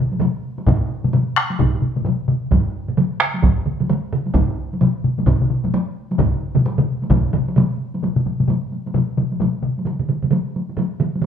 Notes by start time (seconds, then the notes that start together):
0.12 taiko high
0.20 taiko low-mid, taiko mid, taiko high
0.58 taiko high
0.67 taiko, taiko low-mid, taiko high
1.04 taiko low-mid, taiko high
1.14 taiko low-mid, taiko high
1.36 taiko rim
1.50 taiko high
1.59 taiko, taiko low-mid, taiko high
1.82 taiko low-mid
1.96 taiko low-mid
2.05 taiko low-mid, taiko high
2.28 taiko low-mid
2.51 taiko, taiko mid, taiko high
2.88 taiko mid
2.97 taiko mid, taiko high
3.20 taiko rim
3.34 taiko high
3.42 taiko, taiko mid, taiko high
3.66 taiko mid
3.80 taiko mid, taiko high
3.90 taiko mid, taiko high
4.13 taiko mid
4.26 taiko high
4.34 taiko, taiko low-mid, taiko high
4.73 taiko high
4.81 taiko low-mid, taiko high
5.04 taiko low-mid
5.18 taiko low-mid, taiko high
5.27 taiko, taiko low-mid, taiko high
5.41 taiko low-mid
5.51 taiko low-mid
5.64 taiko low-mid, taiko high
5.74 taiko high
6.11 taiko high
6.18 taiko, taiko low-mid, taiko mid, taiko high
6.55 taiko low-mid, taiko mid, taiko high
6.66 taiko high
6.78 taiko low-mid, taiko mid
7.02 taiko high
7.10 taiko, taiko low-mid, taiko mid, taiko high
7.33 taiko low-mid, taiko mid, taiko high
7.49 taiko high
7.56 taiko low-mid, taiko mid, taiko high
7.94 taiko high
8.03 taiko low-mid, taiko high
8.16 taiko low-mid
8.26 taiko low-mid, taiko high
8.40 taiko low-mid, taiko high
8.48 taiko low-mid, taiko high
8.73 taiko high
8.86 taiko high
8.94 taiko low-mid, taiko high
9.17 taiko low-mid, taiko high
9.32 taiko high
9.40 taiko low-mid, taiko high
9.63 taiko low-mid
9.78 taiko high
9.86 taiko mid, taiko high
9.99 taiko mid
10.09 taiko mid, taiko high
10.23 taiko mid, taiko high
10.31 taiko mid, taiko high
10.56 taiko high
10.70 taiko high
10.77 taiko mid, taiko high
11.00 taiko mid, taiko high
11.16 taiko high
11.22 taiko mid